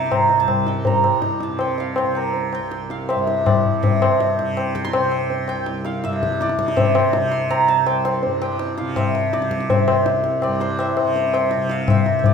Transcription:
Already playing: tanpura C2 G2 C3, santur C5 D5 E5 G5 A5
0.06 santur C6
0.11 santur A#5, tabla na, tabla ge
0.29 tabla te
0.35 tanpura C2
0.40 santur A5
0.48 tabla na, tabla ge
0.67 santur G5, tabla te
0.85 santur A#5, tabla tin, tabla ge
0.92 tanpura G2
1.04 tabla na
1.22 tabla te
1.40 santur A5, tabla te
1.47 tanpura C3
1.59 santur G5, tabla na
1.78 santur F5, tabla te
1.96 santur G5, tabla na
2.03 tanpura C3
2.15 santur A#4, tabla na
2.34 tabla tin
2.53 santur G5, tabla na
2.60 tanpura C2
2.71 tabla te
2.90 santur F5, tabla te
3.09 santur E5, tabla na
3.16 tanpura G2
3.27 tabla te
3.46 santur D5, tabla na, tabla ge
3.65 tabla ge
3.71 tanpura C3
3.83 tanpura G2, santur E5, tabla tin, tabla ge
4.02 tabla na
4.20 tabla te
4.39 tanpura C3, tabla te
4.57 tabla na
4.75 santur G5, tabla ke
4.85 santur C6, tabla te
4.93 tanpura C3, tabla na
5.12 tabla na
5.30 tabla tin
5.48 tanpura C2, santur G5, tabla na
5.66 tabla te
5.85 santur F5, tabla te
6.04 tanpura G2, santur E5, tabla te
6.13 tabla te
6.23 tabla ke
6.32 tabla te
6.41 santur D5, tabla te
6.49 tabla te
6.59 tanpura C3, tabla ke
6.68 tabla te
6.76 santur E5, tabla tin, tabla ge
6.95 tabla na
7.13 tanpura C3, tabla te
7.31 santur C6, tabla te
7.51 santur A#5, tabla na
7.68 tanpura C2, santur A5, tabla te
7.86 santur G5, tabla na
8.05 santur C6, tabla na
8.23 tanpura G2, tabla tin
8.42 santur G5, tabla na
8.59 tabla te
8.78 tanpura C3, santur F5, tabla te
8.96 santur E5, tabla na, tabla ge
9.15 tabla te
9.33 tanpura C3, santur D5, tabla te
9.42 tabla te
9.51 tabla ke
9.60 tabla te
9.70 santur E5, tabla tin, tabla ge
9.88 tanpura C2, tabla na
10.06 tabla te
10.24 tabla te
10.42 santur D5, tabla na
10.46 tanpura G2
10.60 santur C5, tabla te
10.79 santur E5, tabla na
10.97 tabla na
11.01 tanpura C3
11.16 tabla tin
11.34 santur G5, tabla na
11.51 tabla te
11.56 tanpura C3
11.69 santur F5, tabla te
11.88 santur E5, tabla na, tabla ge
12.06 tabla te
12.11 tanpura C2
12.19 santur E5
12.24 santur D5, tabla tin, tabla ge

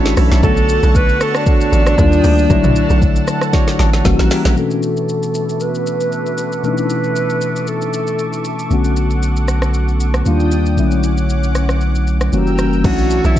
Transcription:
Already playing: log drum bass A1, tine electric piano E3 A3 C#4 D4 F#4 F#5 A5, tonewheel organ D4 E4 A4 C#5, analog synth pad A4 E5 A5 B5
0.05 snare, shaker
0.17 log drum bass B1, tonewheel organ D4 E4 A4 C#5, cross-stick, open hi-hat, shaker
0.31 log drum bass B1, snare, shaker
0.42 log drum bass B1, tine electric piano D3 A3 B3 F#4 C#5, tonewheel organ D4 F#4 A4 C#5, alto saxophone A4, analog synth pad F#5 C#6, kick, shaker
0.57 shaker
0.69 shaker
0.83 log drum bass B1, tonewheel organ D4 F#4 A4 C#5, shaker
0.95 alto saxophone B4, kick, shaker
1.09 shaker
1.20 tonewheel organ D4 F#4 A4 C#5, alto saxophone A4, cross-stick, shaker
1.35 alto saxophone D4, cross-stick, shaker
1.46 tonewheel organ D4 F#4 A4 C#5, kick, shaker
1.61 shaker
1.72 log drum bass A1, shaker
1.86 tonewheel organ D4 F#4 A4 C#5, cross-stick, shaker
1.98 log drum bass D#2, tine electric piano D#3 G3 A#3 D4 F4, analog synth pad D4 G5 D#6, kick, shaker
2.12 shaker
2.24 log drum bass D2, tonewheel organ D#4 G4 D5, open hi-hat, shaker
2.38 shaker
2.49 log drum bass B1, tine electric piano D3 F#3 A3 E4 C#5, tonewheel organ D4 F#4 C#5, analog synth pad A4 F#5 A5, kick, shaker
2.64 mid tom, shaker
2.76 shaker
2.90 log drum bass B1, shaker
3.02 kick, shaker
3.16 shaker
3.27 cross-stick, shaker
3.41 cross-stick, shaker
3.53 tonewheel organ D4 F#4 C#5, kick, snare, shaker
3.68 snare, shaker
3.79 log drum bass A1, tine electric piano A5, snare, shaker
3.93 tonewheel organ D4 F#4 C#5, snare, shaker
4.05 log drum bass F#1, tine electric piano E3 G3 A#3 C#4 F#4 F#5, analog synth pad A#4 F#5 E6, kick, snare, shaker
4.19 log drum bass A#1, snare, shaker
4.31 tonewheel organ E4 G4 A#4, snare, open hi-hat, shaker
4.45 log drum bass A#1, snare, shaker
4.56 tine electric piano B2 E3 A3 C#4 D4 F#4, analog synth pad B3 A4 E5 C#6 D6, alto saxophone A4, shaker
4.71 shaker
4.83 shaker
4.97 shaker
5.09 shaker
5.23 shaker
5.34 shaker
5.49 shaker
5.60 alto saxophone B4, shaker
5.75 shaker
5.87 shaker
6.00 shaker
6.12 shaker
6.26 shaker
6.38 shaker
6.52 shaker
6.63 tine electric piano B2 E3 A3 C#4 D4 D#4, alto saxophone B4, shaker
6.73 tine electric piano E4
6.77 shaker
6.90 shaker
7.04 shaker
7.16 shaker
7.30 shaker
7.41 shaker
7.56 shaker
7.67 alto saxophone A4, shaker
7.81 shaker
7.93 shaker
8.07 shaker
8.19 shaker
8.33 shaker
8.44 shaker
8.59 shaker
8.69 sub bass B1, tine electric piano D3 A3 B3 C#4 F#4, analog synth pad F#5, shaker
8.84 shaker
8.96 shaker
9.10 shaker
9.22 shaker
9.36 shaker
9.48 cross-stick, shaker
9.62 cross-stick, shaker
9.74 shaker
9.88 shaker
10.00 shaker
10.14 cross-stick, shaker
10.25 sub bass D#2, tine electric piano D#3 G3 A#3 D4 F4, analog synth pad D4 G5 D#6, shaker
10.40 shaker
10.51 shaker
10.66 shaker
10.76 sub bass B1, tine electric piano D3 F#3 A3 C#4 E4, analog synth pad C#4 F#5 D6, shaker
10.91 shaker
11.03 shaker
11.17 shaker
11.29 shaker
11.43 shaker
11.55 cross-stick, shaker
11.69 cross-stick, shaker
11.81 shaker
11.95 shaker
12.07 shaker
12.21 cross-stick, shaker
12.32 sub bass F#1, tine electric piano E3 G3 A#3 C#4 F#4, analog synth pad A#4 G5 E6, shaker
12.47 shaker
12.58 cross-stick, shaker
12.73 shaker
12.83 log drum bass B1, tine electric piano E3 A3 C#4 D4 F#4, tonewheel organ D4 E4 A4 C#5, alto saxophone F#4, analog synth pad A4 E5 A5 C#6, kick, crash, shaker
12.98 shaker
13.10 shaker
13.24 log drum bass B1, tonewheel organ D4 E4 A4 C#5, alto saxophone E4, shaker
13.36 kick, shaker

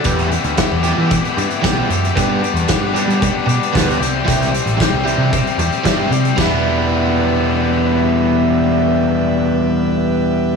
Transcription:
Already playing: transistor combo organ E5
0.04 picked electric bass E2, overdriven electric guitar E3 G3 B3 E4 G4, transistor combo organ D5 B5, kick, closed hi-hat
0.08 transistor combo organ G4
0.19 closed hi-hat
0.31 overdriven electric guitar B3 E4 G4, muted overdriven electric guitar stroke, closed hi-hat
0.44 picked electric bass D2, closed hi-hat
0.56 overdriven electric guitar E3 B3 E4 G4, muted overdriven electric guitar stroke, kick, snare, closed hi-hat
0.71 picked electric bass E2
0.83 overdriven electric guitar E3 G3 B3 E4 G4, closed hi-hat
0.98 picked electric bass E3
1.10 overdriven electric guitar E3 B3 E4 G4, muted overdriven electric guitar stroke, kick, closed hi-hat
1.25 closed hi-hat
1.36 picked electric bass G2, overdriven electric guitar B3 E4 G4, muted overdriven electric guitar stroke, closed hi-hat
1.50 closed hi-hat
1.62 picked electric bass B1, overdriven electric guitar E3 G3 B3 E4 G4, kick, snare, closed hi-hat
1.66 overdriven electric guitar G4
1.89 picked electric bass F#2, overdriven electric guitar B3 E4 G4, muted overdriven electric guitar stroke, closed hi-hat
2.04 closed hi-hat
2.15 picked electric bass G2, overdriven electric guitar G3 B3 D4 G4, transistor combo organ A5, kick, closed hi-hat
2.43 overdriven electric guitar D4 G4, muted overdriven electric guitar stroke, closed hi-hat
2.54 picked electric bass E2, closed hi-hat
2.68 overdriven electric guitar B3 D4 G4, muted overdriven electric guitar stroke, kick, snare, closed hi-hat
2.81 picked electric bass G2
2.94 overdriven electric guitar G3 B3 D4 G4, closed hi-hat
3.07 picked electric bass G3, closed hi-hat
3.20 overdriven electric guitar B3 D4, muted overdriven electric guitar stroke, kick, closed hi-hat
3.25 overdriven electric guitar G4
3.46 picked electric bass B2, overdriven electric guitar G4, muted overdriven electric guitar stroke, closed hi-hat
3.51 overdriven electric guitar D4
3.63 closed hi-hat
3.73 picked electric bass D2, overdriven electric guitar G3 B3 D4 G4, kick, closed hi-hat
3.77 snare
3.90 closed hi-hat
3.99 picked electric bass C2, overdriven electric guitar G3 C4 E4 G4, transistor combo organ E5 C6, muted overdriven electric guitar stroke, closed hi-hat
4.25 picked electric bass C2, overdriven electric guitar E3 G3 C4 E4 G4, kick
4.29 overdriven electric guitar E4 G4, closed hi-hat
4.42 closed hi-hat
4.51 overdriven electric guitar C4 E4 G4, muted overdriven electric guitar stroke, closed hi-hat
4.66 picked electric bass A1, closed hi-hat
4.77 overdriven electric guitar G3 C4 E4, muted overdriven electric guitar stroke, kick, closed hi-hat
4.82 overdriven electric guitar G4, snare
4.92 picked electric bass C2
5.04 overdriven electric guitar E3 G3 C4 E4 G4, closed hi-hat
5.18 picked electric bass C3
5.31 overdriven electric guitar G3 C4 E4, muted overdriven electric guitar stroke, kick, closed hi-hat
5.35 overdriven electric guitar G4
5.47 closed hi-hat
5.58 picked electric bass E2, overdriven electric guitar C4 E4 G4, muted overdriven electric guitar stroke, closed hi-hat
5.72 closed hi-hat
5.84 picked electric bass G2, overdriven electric guitar E3 G3 C4 E4 G4, kick, snare, closed hi-hat
5.88 overdriven electric guitar G4
6.10 picked electric bass C3, overdriven electric guitar C4 E4 G4, muted overdriven electric guitar stroke, closed hi-hat
6.25 closed hi-hat
6.36 picked electric bass E1, overdriven electric guitar E3 G3 B3, kick, snare, crash
6.40 transistor combo organ D4 B4 E5 G5, overdriven electric guitar E4

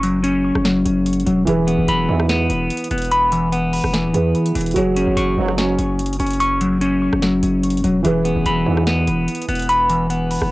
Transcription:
Already playing: 808-style bass F#1, grand piano F#3 F#4 G#4 C#5, clean electric guitar C#4 C#6
0.03 clean electric guitar F#3, closed hi-hat
0.24 clean electric guitar C#4, closed hi-hat
0.55 808-style bass F#1, cross-stick
0.65 clean electric guitar F#3, snare, closed hi-hat
0.85 808-style bass F#1, closed hi-hat
1.06 closed hi-hat
1.13 closed hi-hat
1.20 closed hi-hat
1.26 808-style bass E1, clean electric guitar F#3, closed hi-hat
1.45 808-style bass E1, grand piano E3 E4 G#4 B4, clean electric guitar E3, closed hi-hat
1.67 clean electric guitar B3, closed hi-hat
1.78 808-style bass E1
1.88 808-style bass E1, clean electric guitar B5, closed hi-hat
2.09 brass ensemble B1 G#2 E3, 808-style bass E2
2.20 cross-stick
2.29 clean electric guitar B3, snare, closed hi-hat
2.50 808-style bass E1, closed hi-hat
2.70 closed hi-hat
2.77 closed hi-hat
2.84 closed hi-hat
2.91 808-style bass E1, clean electric guitar B3, closed hi-hat
2.98 closed hi-hat
3.02 closed hi-hat
3.05 closed hi-hat
3.11 clean electric guitar B5, closed hi-hat
3.32 clean electric guitar E3, closed hi-hat
3.52 clean electric guitar B3, closed hi-hat
3.73 open hi-hat
3.84 808-style bass E1, cross-stick
3.93 clean electric guitar E3, snare, closed hi-hat
4.05 808-style bass D1
4.13 808-style bass E2, grand piano E3 E4 G#4 B4, closed hi-hat
4.35 closed hi-hat
4.46 closed hi-hat
4.55 808-style bass E1, clean electric guitar E3, closed hi-hat, open hi-hat
4.61 closed hi-hat
4.66 closed hi-hat
4.71 grand piano F#3, closed hi-hat
4.75 808-style bass F#1, clean electric guitar F#3, grand piano F#4 G#4 C#5, closed hi-hat
4.96 clean electric guitar C#4, closed hi-hat
5.07 808-style bass F#1
5.17 808-style bass F#1, clean electric guitar C#6, closed hi-hat
5.38 808-style bass F#1, brass ensemble C#2 G#2 F#3
5.48 cross-stick
5.58 clean electric guitar C#4, snare, closed hi-hat
5.79 808-style bass F#1, closed hi-hat
5.99 closed hi-hat
6.06 closed hi-hat
6.13 closed hi-hat
6.20 808-style bass F#1, clean electric guitar C#4, closed hi-hat
6.27 closed hi-hat
6.31 closed hi-hat
6.33 closed hi-hat
6.40 clean electric guitar C#6, closed hi-hat
6.61 clean electric guitar F#3, closed hi-hat
6.81 clean electric guitar C#4, closed hi-hat
7.13 808-style bass F#1, cross-stick
7.22 clean electric guitar F#3, snare, closed hi-hat
7.43 808-style bass F#1, closed hi-hat
7.63 closed hi-hat
7.70 closed hi-hat
7.77 closed hi-hat
7.84 808-style bass E1, clean electric guitar F#3, closed hi-hat
8.03 808-style bass E1, grand piano E3 E4 G#4 B4, clean electric guitar E3, closed hi-hat
8.25 clean electric guitar B3, closed hi-hat
8.36 808-style bass E1
8.46 808-style bass E1, clean electric guitar B5, closed hi-hat
8.66 brass ensemble B1 G#2 E3, 808-style bass E2
8.77 cross-stick
8.87 clean electric guitar B3, snare, closed hi-hat
9.07 808-style bass E1, closed hi-hat
9.28 closed hi-hat
9.35 closed hi-hat
9.42 closed hi-hat
9.48 808-style bass E1, clean electric guitar B3, closed hi-hat
9.55 closed hi-hat
9.59 closed hi-hat
9.62 closed hi-hat
9.69 clean electric guitar B5, closed hi-hat
9.90 clean electric guitar E3, closed hi-hat
10.10 clean electric guitar B3, closed hi-hat
10.31 open hi-hat
10.42 808-style bass E1, cross-stick

